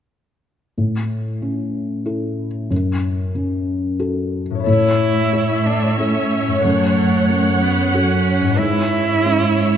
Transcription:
0.78 A2
1.42 C#4
2.06 E4 A4
2.70 F#2
3.35 C#4
3.99 F#4 A4
4.50 A2
4.55 C#5
4.60 E4
4.64 A2 A4 C#5 E5
4.68 A2 E4
5.33 C#5
5.66 D4
5.99 C#4 E4 A4
6.48 F#2
6.52 C#4
6.57 F#4
6.61 F#2 A3 A4
6.66 F#2 F#5
7.30 C#4
7.62 B3
7.94 C#4 F#4 A4
8.41 G#2
8.46 C#4 E4
8.55 G#2 B4
8.59 G#2 E4 C#5 E5
9.25 C#4

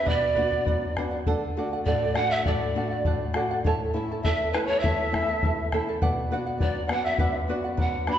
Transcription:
Already playing: E5
0.06 B2 B4 D5 F#5, bombo low
0.35 B3 D4 F#4 B4 D5 F#5, bombo low
0.51 D5 F#5, bombo low
0.65 F#2 B4 D5 F#5, bombo low
0.97 B3 D4 F#4 B4 D5 F#5, bombo rim, bombo low
1.11 D5 F#5
1.26 D3 A4 D5 F#5, bombo low
1.57 A3 D4 F#4 A4 D5 F#5
1.73 D5 F#5
1.85 A2 A4 D5 F#5, bombo low
2.15 A3 D4 F#4 A4 D5 F#5, bombo rim
2.30 D5 E5 F#5
2.45 A2 A4 D5 F#5, bombo low
2.75 A3 D4 F#4 A4 D5 F#5
2.91 D5 F#5
3.05 A2 A4 D5 F#5, bombo low
3.33 A3 D4 F#4 A4 D5 F#5, bombo rim
3.51 D5 F#5
3.64 A2 E4 A4 C#5 E5 A5, bombo low
3.94 A3 C#4 E4 A4 E5 A5
4.12 E4 A4 A5
4.23 E2 E4 A4 E5 A5, bombo low
4.53 A3 C#4 E4 A4 B4 E5 A5, bombo rim
4.64 C#5
4.69 E4 A4 A5
4.78 E5
4.83 E2 E4 A4 C#5 E5 A5, bombo low
5.12 A3 C#4 E4 A4 E5 A5, bombo rim, bombo low
5.29 E4 A4 A5
5.43 E2 E4 A4 E5 A5, bombo low
5.72 A3 C#4 E4 A4 E5 A5, bombo rim, bombo low
5.89 E4 A4 A5
6.02 B2 B4 D5 F#5, bombo low
6.31 B3 D4 F#4 B4 D5 F#5
6.47 D5 F#5
6.58 F#2 B4 D5 F#5, bombo low
6.87 B3 D4 F#4 F#5, bombo rim
6.92 B4 D5 F#5
7.05 D5 E5 F#5
7.18 F#2 B4 D5 F#5, bombo low
7.48 B3 D4 F#4 B4 D5 F#5
7.64 D5 F#5
7.77 F#2 B4 D5 F#5, bombo low
7.81 F#5
8.07 B3 D4 F#4 B4 D5 F#5 B5, bombo rim

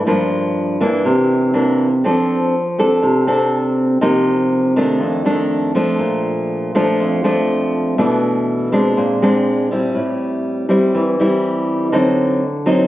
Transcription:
0.06 G2 F3 A#3 D4
0.81 E3 A#3 D4
1.05 C3
1.54 E3 A#3 D4
2.04 F3 C4 D4 A4
2.78 C4 D4 A4
3.02 C3
3.27 C4 D4 A4
4.01 C3 F3 A#3 D#4
4.76 D#3 A3 D4
5.00 F2
5.25 D#3 A3 D4
5.75 F3 A3 D4
5.99 A#2
6.75 F3 A3 D4
7.00 F2
7.24 F3 A3 D4
7.98 B2 E3 A3 D4
8.72 G#3 C4 D4
8.97 A#2
9.22 G#3 C4 D4
9.71 G3 C4 E4
9.94 A2
10.69 G3 C4 E4
10.95 E3
11.20 G3 C4 E4
11.92 D3 F#3 C4 D#4
12.66 F#3 C4 D#4

